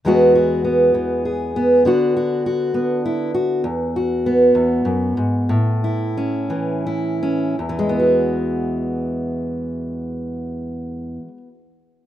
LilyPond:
\new Staff \with { instrumentName = "Steel-string acoustic guitar" } { \time 6/8 \key e \mixolydian \tempo 4. = 62 << { <e gis b fis'>8 fis'8 b4 gis'8 b8 | <b d' fis'>8 fis'8 fis'4 e'8 fis'8 | r8 fis'8 b2~ | b8 e'8 cis'4 e'8 cis'8 |
<e gis b fis'>2.~ | <e gis b fis'>2. | } \\ { e,4. e4. | d4. b4. | e,4. e,8 fis,8 gis,8 | a,4. e4. |
e,2.~ | e,2. | } >> }